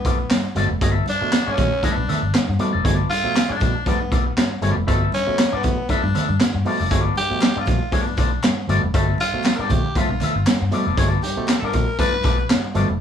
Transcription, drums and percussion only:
0.05 kick, closed hi-hat
0.30 snare, clap, closed hi-hat, high conga
0.55 closed hi-hat, high conga
0.81 kick, closed hi-hat
1.06 closed hi-hat, muted conga
1.32 snare, clap, closed hi-hat, high conga
1.57 kick, closed hi-hat, muted conga, low conga
1.83 kick, closed hi-hat, muted conga
2.09 closed hi-hat, low conga
2.34 snare, clap, closed hi-hat, high conga
2.59 closed hi-hat, high conga
2.85 kick, closed hi-hat
3.09 closed hi-hat, muted conga
3.35 snare, clap, closed hi-hat, high conga
3.60 kick, closed hi-hat, muted conga
3.86 kick, closed hi-hat, muted conga
4.12 kick, closed hi-hat
4.37 snare, clap, closed hi-hat, high conga
4.62 closed hi-hat, high conga
4.88 kick, closed hi-hat, muted conga
5.12 closed hi-hat, muted conga
5.38 snare, clap, closed hi-hat, high conga
5.63 kick, closed hi-hat, muted conga
5.89 kick, closed hi-hat, muted conga
6.15 closed hi-hat, low conga
6.40 snare, clap, closed hi-hat, high conga
6.65 open hi-hat, high conga
6.91 kick, closed hi-hat, muted conga
7.15 closed hi-hat, muted conga
7.41 snare, clap, closed hi-hat, high conga
7.43 clap
7.66 kick, closed hi-hat, muted conga
7.92 kick, closed hi-hat, muted conga
8.18 kick, clap, closed hi-hat
8.43 snare, clap, closed hi-hat, high conga
8.68 closed hi-hat, high conga
8.94 kick, closed hi-hat, muted conga
9.18 closed hi-hat, muted conga
9.44 snare, clap, closed hi-hat, high conga
9.46 clap
9.70 kick, closed hi-hat, muted conga, low conga
9.96 kick, closed hi-hat, muted conga
10.21 clap, closed hi-hat, low conga
10.47 snare, clap, closed hi-hat, high conga
10.71 closed hi-hat, high conga
10.97 kick, closed hi-hat, muted conga
11.22 closed hi-hat, muted conga
11.48 snare, clap, closed hi-hat, high conga
11.73 kick, closed hi-hat, muted conga
11.99 kick, closed hi-hat, muted conga
12.24 kick, clap, closed hi-hat
12.50 snare, clap, closed hi-hat, high conga
12.74 closed hi-hat, high conga

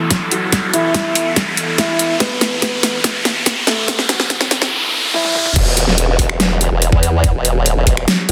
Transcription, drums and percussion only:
0.10 kick, snare, closed hi-hat
0.31 closed hi-hat
0.52 kick, snare, closed hi-hat
0.73 closed hi-hat
0.94 kick, snare, closed hi-hat
1.15 open hi-hat
1.36 kick, snare, closed hi-hat
1.57 closed hi-hat
1.78 kick, snare, closed hi-hat
1.99 closed hi-hat
2.20 kick, snare, closed hi-hat
2.41 snare, closed hi-hat
2.62 kick, snare, closed hi-hat
2.83 snare, open hi-hat
3.04 kick, snare, closed hi-hat
3.25 snare, closed hi-hat
3.46 kick, snare, closed hi-hat
3.67 snare, closed hi-hat
3.88 kick, snare, closed hi-hat
3.99 snare
4.09 snare, closed hi-hat
4.20 snare
4.30 kick, snare, closed hi-hat
4.41 snare
4.51 snare, open hi-hat
4.62 snare
5.14 high tom
5.25 high tom
5.35 mid tom
5.46 mid tom
5.56 kick, closed hi-hat, crash
5.77 closed hi-hat
5.88 snare
5.98 closed hi-hat
6.19 kick, open hi-hat
6.29 finger snap
6.40 snare, closed hi-hat
6.61 closed hi-hat
6.82 closed hi-hat
6.92 kick
7.03 closed hi-hat
7.24 kick, closed hi-hat
7.45 closed hi-hat
7.66 closed hi-hat
7.87 kick, open hi-hat
7.97 finger snap
8.08 snare, closed hi-hat
8.29 closed hi-hat

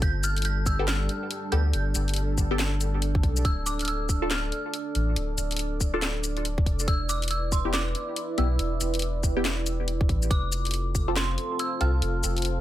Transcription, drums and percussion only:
0.02 kick, closed hi-hat
0.23 closed hi-hat, shaker
0.36 closed hi-hat
0.42 closed hi-hat
0.45 closed hi-hat
0.66 kick, shaker
0.88 snare, clap, closed hi-hat
1.09 closed hi-hat
1.31 closed hi-hat
1.52 closed hi-hat
1.73 closed hi-hat
1.95 closed hi-hat, shaker
2.08 closed hi-hat
2.14 closed hi-hat
2.16 closed hi-hat
2.38 kick, shaker
2.59 snare, clap, closed hi-hat
2.81 closed hi-hat, shaker
3.02 closed hi-hat
3.15 kick
3.23 kick, closed hi-hat
3.37 shaker
3.45 kick, closed hi-hat
3.66 closed hi-hat, shaker
3.79 closed hi-hat
3.85 closed hi-hat
3.88 closed hi-hat
4.09 kick, shaker
4.31 snare, clap, closed hi-hat
4.52 closed hi-hat
4.74 closed hi-hat
4.95 closed hi-hat
5.16 closed hi-hat
5.38 closed hi-hat, shaker
5.51 closed hi-hat
5.56 closed hi-hat
5.59 closed hi-hat
5.81 kick, shaker
6.02 snare, clap, closed hi-hat
6.24 closed hi-hat, shaker
6.37 closed hi-hat
6.45 closed hi-hat
6.58 kick
6.66 kick, closed hi-hat
6.79 shaker
6.88 kick, closed hi-hat
7.09 closed hi-hat, shaker
7.22 closed hi-hat
7.28 closed hi-hat
7.31 closed hi-hat
7.52 kick, shaker
7.74 snare, clap, closed hi-hat
7.95 closed hi-hat
8.16 closed hi-hat
8.38 closed hi-hat
8.59 closed hi-hat
8.81 closed hi-hat, shaker
8.94 closed hi-hat
8.99 closed hi-hat
9.02 closed hi-hat
9.23 kick, shaker
9.45 snare, clap, closed hi-hat
9.66 closed hi-hat, shaker
9.88 closed hi-hat
10.01 kick
10.09 kick, closed hi-hat
10.22 shaker
10.31 kick, closed hi-hat
10.52 closed hi-hat, shaker
10.65 closed hi-hat
10.71 closed hi-hat
10.74 closed hi-hat
10.95 kick, shaker
11.16 snare, clap, closed hi-hat
11.38 closed hi-hat
11.59 closed hi-hat
11.81 closed hi-hat
12.02 closed hi-hat
12.24 closed hi-hat, shaker
12.37 closed hi-hat
12.42 closed hi-hat
12.45 closed hi-hat

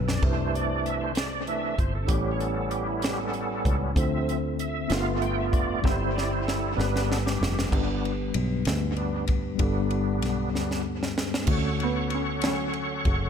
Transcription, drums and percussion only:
0.09 snare
0.22 kick, splash
0.55 closed hi-hat
0.86 closed hi-hat
1.15 snare, closed hi-hat
1.47 closed hi-hat
1.78 kick, closed hi-hat
2.08 kick, closed hi-hat
2.40 closed hi-hat
2.71 closed hi-hat
3.02 snare, closed hi-hat
3.34 closed hi-hat
3.65 kick, closed hi-hat
3.96 kick, closed hi-hat
4.29 closed hi-hat
4.59 closed hi-hat
4.90 snare, closed hi-hat
5.22 closed hi-hat
5.53 kick, closed hi-hat
5.84 kick, snare
6.18 snare
6.48 snare
6.80 snare
6.96 snare
7.12 snare
7.27 snare
7.43 snare
7.59 snare
7.72 kick, crash
8.05 ride bell
8.34 ride bell
8.65 snare, ride bell
8.96 ride bell
9.28 kick, ride bell
9.59 kick, ride bell
9.90 ride bell
10.22 snare, ride bell
10.55 snare
10.71 snare
11.03 snare
11.18 snare
11.34 snare
11.47 kick, crash
11.80 ride bell
12.10 ride bell
12.42 snare, ride bell
12.73 ride bell
13.05 kick, ride bell

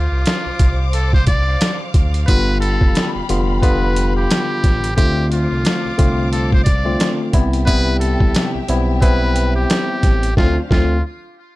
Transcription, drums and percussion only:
0.26 snare, closed hi-hat
0.59 kick, closed hi-hat
0.93 closed hi-hat
1.13 kick
1.27 kick, closed hi-hat
1.61 snare, closed hi-hat
1.94 kick, closed hi-hat
2.14 closed hi-hat
2.28 kick, closed hi-hat
2.62 closed hi-hat
2.81 kick
2.95 snare, closed hi-hat
3.29 closed hi-hat
3.63 kick, closed hi-hat
3.96 closed hi-hat
4.31 snare, closed hi-hat
4.64 kick, snare, closed hi-hat
4.84 closed hi-hat
4.98 kick, closed hi-hat
5.32 closed hi-hat
5.65 snare, closed hi-hat
5.99 kick, closed hi-hat
6.33 closed hi-hat
6.52 kick
6.66 kick, closed hi-hat
7.00 snare, closed hi-hat
7.33 kick, closed hi-hat
7.53 closed hi-hat
7.67 kick, closed hi-hat
8.01 closed hi-hat
8.20 kick
8.35 snare, closed hi-hat
8.68 closed hi-hat
9.02 kick, closed hi-hat
9.36 closed hi-hat
9.70 snare, closed hi-hat
10.03 kick, snare, closed hi-hat
10.23 closed hi-hat
10.37 kick, snare
10.71 kick, snare

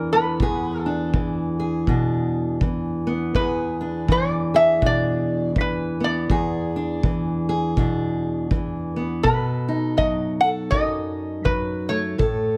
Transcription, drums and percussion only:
0.40 kick
1.14 kick
1.87 kick
2.61 kick
3.35 kick
4.08 kick
4.82 kick
5.56 kick
6.30 kick
7.03 kick
7.77 kick
8.51 kick
9.24 kick
9.98 kick
10.72 kick
11.46 kick
12.19 kick

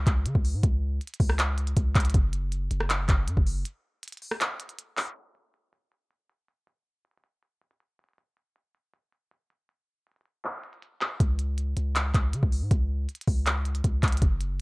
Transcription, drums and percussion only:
0.07 kick, clap, closed hi-hat
0.26 closed hi-hat
0.35 kick
0.45 open hi-hat
0.63 kick, closed hi-hat
1.01 closed hi-hat
1.07 closed hi-hat
1.14 closed hi-hat
1.20 kick, open hi-hat
1.29 cross-stick
1.39 clap, closed hi-hat
1.58 closed hi-hat
1.67 closed hi-hat
1.77 kick, closed hi-hat
1.95 kick, clap, closed hi-hat
2.00 closed hi-hat
2.05 closed hi-hat
2.10 closed hi-hat
2.14 kick, closed hi-hat
2.33 closed hi-hat
2.52 closed hi-hat
2.71 closed hi-hat
2.80 cross-stick
2.90 clap, closed hi-hat
3.09 kick, clap, closed hi-hat
3.28 closed hi-hat
3.37 kick
3.47 open hi-hat
3.65 closed hi-hat
4.03 closed hi-hat
4.08 closed hi-hat
4.12 closed hi-hat
4.17 closed hi-hat
4.22 open hi-hat
4.31 cross-stick
4.41 clap, closed hi-hat
4.60 closed hi-hat
4.69 closed hi-hat
4.79 closed hi-hat
4.97 clap, open hi-hat
5.35 closed hi-hat
5.54 closed hi-hat
5.73 closed hi-hat
5.92 closed hi-hat
6.11 closed hi-hat
6.30 closed hi-hat
6.48 closed hi-hat
6.67 closed hi-hat
7.05 closed hi-hat
7.11 closed hi-hat
7.18 closed hi-hat
7.24 closed hi-hat
7.43 closed hi-hat
7.62 closed hi-hat
7.71 closed hi-hat
7.80 closed hi-hat
7.99 closed hi-hat
8.04 closed hi-hat
8.09 closed hi-hat
8.13 closed hi-hat
8.18 closed hi-hat
8.37 closed hi-hat
8.56 closed hi-hat
8.75 closed hi-hat
8.94 closed hi-hat
9.12 closed hi-hat
9.31 closed hi-hat
9.50 closed hi-hat
9.69 closed hi-hat
10.07 closed hi-hat
10.12 closed hi-hat
10.16 closed hi-hat
10.21 closed hi-hat
10.26 closed hi-hat
10.45 clap, closed hi-hat
10.64 closed hi-hat
10.73 closed hi-hat
10.82 closed hi-hat
11.01 clap, closed hi-hat
11.20 kick, closed hi-hat
11.39 closed hi-hat
11.58 closed hi-hat
11.77 closed hi-hat
11.96 clap, closed hi-hat
12.14 kick, clap, closed hi-hat
12.33 closed hi-hat
12.43 kick
12.52 open hi-hat
12.71 kick, closed hi-hat
13.09 closed hi-hat
13.15 closed hi-hat
13.21 closed hi-hat
13.27 kick, open hi-hat
13.46 clap, closed hi-hat
13.65 closed hi-hat
13.75 closed hi-hat
13.84 kick, closed hi-hat
14.03 kick, clap, closed hi-hat
14.08 closed hi-hat
14.12 closed hi-hat
14.17 closed hi-hat
14.22 kick, closed hi-hat
14.41 closed hi-hat

